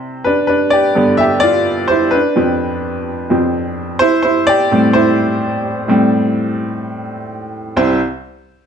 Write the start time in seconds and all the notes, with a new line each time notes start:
Already playing: C3 G3 E4 C5
0.24 D4 B4
0.47 D4 B4
0.70 G4 D5
0.95 G2 D3 B3
1.17 G4 E5
1.40 F4 D5
1.88 E4 C5
2.11 D4 B4
2.36 F2 F3 C4
3.30 F2 F3 C4
3.99 E4 C5
4.23 E4 C5
4.47 G4 D5
4.71 A2 G3 C4
4.93 E4 C5
5.88 A2 G3 C4
7.77 C2 C4 E4 G4 C5